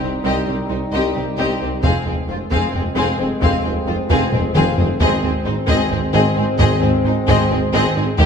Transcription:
Already playing: french horn section G3 D#4, sub drop
0.01 tuba C2, cello section C2, double bass section C2, viola section C4, violin section C4 G4
0.23 tuba C2, cello section C2, double bass section C2, viola section C4, violin section G4 D#5
0.46 tuba C2, cello section C2, double bass section C2, viola section C4, violin section C4 G4
0.69 cello section C2, tuba C2, double bass section C2, viola section C4, violin section D#4 C5
0.92 cello section C2, tuba C2, double bass section C2, viola section C4, violin section G4 D#5
1.15 cello section C2, tuba C2, double bass section C2, viola section C4, violin section C4 G4
1.37 cello section C2, tuba C2, double bass section C2, viola section C4, violin section G4 D#5
1.60 tuba C2, cello section C2, double bass section C2, viola section C4, violin section C4 G4
1.82 tuba F1, double bass section F1, cello section F2, french horn section G#3 C4, viola section C4, violin section G#4 F5, taiko
2.05 tuba F1, double bass section F1, cello section F2, viola section C4, violin section C4 G#4
2.28 tuba F1, double bass section F1, cello section F2, viola section C4, violin section F4 C5
2.51 tuba F1, double bass section F1, cello section F2, viola section C4, violin section G#4 F5, taiko
2.73 tuba F1, double bass section F1, cello section F2, viola section C4, violin section C4 G#4
2.95 tuba F1, double bass section F1, cello section F2, viola section C4, violin section G#4 F5
3.18 tuba F1, double bass section F1, cello section F2, viola section C4, violin section C4 G#4
3.41 tuba F1, double bass section F1, cello section F2, viola section C4, violin section G#4 F5, taiko
3.63 tuba F1, double bass section F1, cello section F2, viola section C4, violin section C4 G#4
3.87 tuba F1, double bass section F1, cello section F2, viola section C4, violin section F4 C5
4.09 tuba F1, double bass section F1, cello section F2, viola section C4, violin section G#4 F5, taiko
4.32 tuba F1, double bass section F1, cello section F2, viola section C4, violin section C4 G#4, taiko low-mid
4.55 double bass section F1, tuba F1, cello section F2, viola section C4, violin section G#4 F5, taiko mid
4.78 double bass section F1, tuba F1, cello section F2, violin section C4 G#4, viola section C4, taiko low
5.00 double bass section G#1, tuba G#1, cello section G#2, french horn section G#3 C4, viola section C4, violin section G#4 D#5, taiko
5.22 double bass section G#1, tuba G#1, cello section G#2, violin section C4 G#4, viola section C4
5.45 double bass section G#1, tuba G#1, cello section G#2, viola section C4, violin section D#4 C5
5.67 double bass section G#1, tuba G#1, cello section G#2, viola section C4, violin section G#4 D#5, taiko
5.90 double bass section G#1, tuba G#1, cello section G#2, viola section C4, violin section C4 G#4
6.13 tuba G#1, double bass section G#1, cello section G#2, viola section C4, violin section G#4 D#5
6.36 tuba G#1, double bass section G#1, cello section G#2, viola section C4, violin section C4 G#4
6.59 tuba G#1, double bass section G#1, cello section G#2, viola section C4, violin section G#4 D#5, taiko
6.80 tuba G#1, double bass section G#1, cello section G#2, viola section C4, violin section C4 G#4
7.04 tuba G#1, double bass section G#1, cello section G#2, viola section C4, violin section D#4 C5
7.27 tuba G#1, double bass section G#1, cello section G#2, viola section C4, violin section G#4 D#5, taiko
7.50 double bass section G#1, tuba G#1, cello section G#2, violin section C4 G#4, viola section C4
7.72 tuba G#1, double bass section G#1, cello section G#2, viola section C4, violin section G#4 D#5
7.95 tuba G#1, double bass section G#1, cello section G#2, violin section C4 G#4, viola section C4
8.18 tuba D#2, double bass section D#2, cello section D#2, french horn section G3 A#3, viola section A#3, violin section G4 D#5, taiko

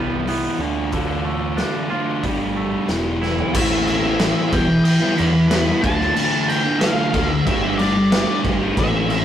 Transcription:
Already playing: picked electric bass C2, clean electric guitar E2 G3, distorted electric guitar E3 G3 B3 E4
0.27 distorted electric guitar E3 G3 B3 E4, open hi-hat
0.59 picked electric bass D2, distorted electric guitar D3 A3 D4 F4
0.92 distorted electric guitar D3 A3 D4 F4, kick, open hi-hat
1.24 clean electric guitar A3
1.58 distorted electric guitar D3 A3 D4 F4, snare, open hi-hat
1.92 distorted electric guitar D3 A3 D4 F4
2.23 picked electric bass G1, distorted electric guitar G3 A3 D4 G4, kick, open hi-hat
2.56 clean electric guitar A3
2.88 picked electric bass E1, clean electric guitar E2, distorted electric guitar E3 B3 E4 G4, snare, open hi-hat
3.22 distorted electric guitar E3 B3 E4 G4, snare
3.38 floor tom
3.54 picked electric bass A1, distorted electric guitar A2 E3 A3 C4 E4, lead electric guitar E5, kick, crash
3.87 lead electric guitar E5, crash
4.03 distorted electric guitar A3 C4 E4
4.19 distorted electric guitar A2 E3 A3 C4 E4, snare, crash
4.52 picked electric bass E1, distorted electric guitar E3 G3 B3 E4, lead electric guitar G5, kick, crash
4.68 muted distorted electric guitar stroke
4.85 lead electric guitar G5, crash
5.00 distorted electric guitar G3 B3 E4
5.16 picked electric bass E2, distorted electric guitar E3 G3 B3 E4, lead electric guitar B5, crash
5.33 muted distorted electric guitar stroke
5.48 distorted electric guitar E3 G3 B3 E4, snare, crash
5.66 distorted electric guitar G3 B3 E4
5.82 picked electric bass D2, distorted electric guitar D3 A3 D4 F4, lead electric guitar A5, kick, crash
5.99 distorted electric guitar A3 D4 F4, snare
6.15 distorted electric guitar D3 A3 D4 F4, crash
6.48 lead electric guitar G5, crash
6.64 distorted electric guitar A3 D4 F4
6.80 distorted electric guitar D3 A3 D4 F4, lead electric guitar F5, snare, crash
7.13 picked electric bass D2, distorted electric guitar D3 A3 D4 F4, kick, crash
7.28 lead electric guitar E5, muted distorted electric guitar stroke
7.46 picked electric bass G1, distorted electric guitar G3 A3 D4 G4, lead electric guitar E5, kick, crash
7.63 distorted electric guitar A3 D4 G4
7.78 distorted electric guitar G3 A3 D4, lead electric guitar D5, crash
7.82 distorted electric guitar G4
7.97 muted distorted electric guitar stroke
8.12 distorted electric guitar G3 A3 D4 G4, snare, crash
8.28 distorted electric guitar A3 D4 G4
8.44 picked electric bass G1, kick, crash
8.61 distorted electric guitar A3 D4 G4
8.77 picked electric bass A1, distorted electric guitar A2 E3 A3 C4 E4, lead electric guitar E5, kick, crash
9.10 lead electric guitar E5, crash

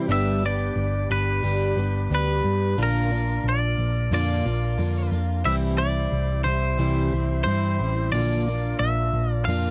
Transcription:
0.08 picked electric bass G1, twelve-string acoustic guitar G2 D3 G3 B3 D4 G4, tonewheel organ D4 G4 B4, clean electric guitar E5
0.44 twelve-string acoustic guitar G3 B3 D4 G4, clean electric guitar D5
0.76 picked electric bass G1
1.10 picked electric bass G1, twelve-string acoustic guitar G3 B3 D4 G4, clean electric guitar B4
1.43 picked electric bass G1, twelve-string acoustic guitar G2 D3 G3 B3 D4 G4
1.77 picked electric bass G1, twelve-string acoustic guitar G3 B3 D4 G4
2.10 picked electric bass D2, twelve-string acoustic guitar G3 B3 D4 G4
2.15 clean electric guitar B4
2.44 picked electric bass G2
2.76 picked electric bass A#1, twelve-string acoustic guitar A#2 D3 A#3 D4 F4, tonewheel organ D4 F4 A#4
2.83 clean electric guitar A#4
3.11 twelve-string acoustic guitar A#3 D4 F4
3.44 picked electric bass A#1
3.49 clean electric guitar D5
3.78 picked electric bass A#1
4.11 picked electric bass F2, twelve-string acoustic guitar A#2 D3 A#3 D4 F4, clean electric guitar D5
4.45 picked electric bass A#1, twelve-string acoustic guitar A#3 D4 F4
4.77 picked electric bass F2, twelve-string acoustic guitar D3 A#3 D4 F4
5.11 picked electric bass F2, twelve-string acoustic guitar A#3 D4 F4
5.44 picked electric bass C2, twelve-string acoustic guitar C3 E3 G3 C4 E4, tonewheel organ E4 G4 C5, clean electric guitar E5
5.77 twelve-string acoustic guitar G3 C4 E4, clean electric guitar D5
6.12 picked electric bass C2
6.44 picked electric bass C2, twelve-string acoustic guitar G3 C4 E4, clean electric guitar C5
6.78 picked electric bass C2, twelve-string acoustic guitar C3 E3 G3 C4 E4
7.12 picked electric bass C2, twelve-string acoustic guitar G3 C4 E4
7.44 picked electric bass G2, twelve-string acoustic guitar E3 G3, clean electric guitar C5
7.48 twelve-string acoustic guitar C4 E4
7.79 picked electric bass A1
8.12 picked electric bass A#1, twelve-string acoustic guitar A#2 D3 A#3 D4 F4, tonewheel organ D4 F4 A#4, clean electric guitar D5
8.47 twelve-string acoustic guitar A#3 D4 F4
8.79 picked electric bass A#1, clean electric guitar E5
9.13 picked electric bass A#1
9.31 clean electric guitar D5
9.45 picked electric bass F2, twelve-string acoustic guitar A#2 D3 A#3 D4, clean electric guitar F5
9.50 twelve-string acoustic guitar F4

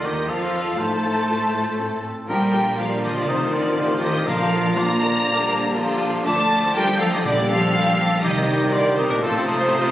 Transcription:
Already playing: clarinet F4
0.03 double bass section D#2, french horn section D#3, cello section D#3, viola section D#3, violin section D#4 D#5, oboe G4, flute section D#5
0.28 double bass section F2, cello section F3, viola section F3, french horn section F3, violin section F4 F5, oboe A4, flute section F5
0.78 double bass section A2, cello section A3, viola section A3, french horn section A3, clarinet D#4, violin section A4 A5, oboe C5, flute section A5
1.29 clarinet F4
1.78 clarinet C4
2.28 double bass section A#1, viola section D3 F3, french horn section F3 D4, cello section G3, violin section A#3 F4 G5, clarinet D4, oboe A#4, flute section G5
2.53 viola section G3
2.78 viola section F3, cello section F3, violin section D4 F5, clarinet F4, oboe A#4, flute section F5
3.03 cello section D#3, oboe G4, flute section D#5, violin section D#5
3.15 cello section D3, oboe F4, flute section D5, violin section D5
3.27 double bass section A1, cello section C3, viola section D#3 F3, violin section C4 D#4 C5, french horn section D#4, oboe D#4, flute section C5
3.52 cello section D3, oboe F4, flute section D5, violin section D5
3.77 viola section F3, violin section F4, clarinet G4
4.01 cello section D#3, oboe G4, flute section D#5, violin section D#5
4.27 double bass section A#1, timpani A#2, viola section D3 F3, cello section F3, french horn section D4, violin section D4 F4 F5, clarinet F4, oboe A#4, flute section F5
4.52 viola section D3
4.77 viola section F3, cello section A#3, violin section D4 A#5, oboe D5, flute section A#5
5.02 viola section D#3
5.27 viola section D3 G3, violin section A#3 D4
5.76 viola section D3 F3, violin section D4 F4, clarinet G4
6.25 double bass section D2, viola section D3 F3, french horn section F3 D4, cello section A3, violin section A3 D4 A5, clarinet F4, oboe D5, flute section A5
6.38 violin section D4
6.51 violin section A3
6.64 violin section D4
6.75 cello section G3, violin section A3 G5, clarinet A4, oboe A#4, flute section G5
6.88 violin section D4
7.00 cello section F3, violin section A3 F5, oboe A4, flute section F5
7.12 cello section D#3, violin section D4 D#5, oboe G4, flute section D#5
7.25 double bass section A#1, timpani A#2, cello section D3, viola section G3, violin section G3 G4 D5, french horn section G3 D4, clarinet G4, oboe G4, flute section D5
7.38 violin section A#3
7.49 cello section F3, violin section D4 F5, oboe A4, flute section F5
7.63 violin section A#3
7.75 violin section G3, clarinet D4
7.88 violin section A#3
8.00 violin section D4
8.13 violin section A#3
8.22 double bass section C2, viola section D#3, cello section D#3, french horn section G3 D#4, violin section G3 D#5, clarinet D#4, oboe G4, flute section D#5
8.37 violin section C4
8.50 violin section G3
8.61 violin section C4
8.71 cello section D3, violin section G3 D5, oboe F4, clarinet G4, flute section D5
8.86 violin section C4
8.96 cello section C3, violin section G3 C5, oboe D#4, flute section C5
9.09 cello section A#2, violin section C4 A#4, oboe D4, flute section A#4
9.21 double bass section A1, cello section A2, viola section F3 A3, french horn section F3 F4, violin section A3 F4 A4, oboe C4, clarinet F4, flute section A4
9.34 violin section C4
9.45 cello section C3, violin section A3 C5, oboe D#4, flute section C5
9.59 violin section C4
9.72 violin section A3, clarinet F4
9.84 violin section C4

